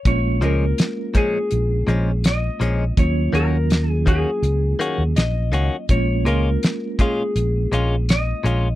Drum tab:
HH |xxxxxxxx|xxxxxxxx|xxxxxxxx|
SD |--o---o-|--o---o-|--o---o-|
BD |o--o----|o--o----|o--o----|